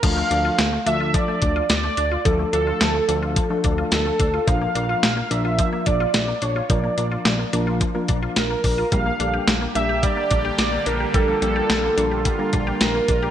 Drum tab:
CC |x-------|--------|--------|--------|
HH |xxxxxxxx|xxxxxxxx|xxxxxxxx|xxxxxxxo|
SD |--o---o-|--o---o-|--o---o-|--o---o-|
BD |o---oo--|o---oo-o|o---oo--|o---oo-o|

CC |--------|--------|
HH |xxxxxxxx|xxxxxxxx|
SD |--o---o-|--o---o-|
BD |o---oo--|o---oo-o|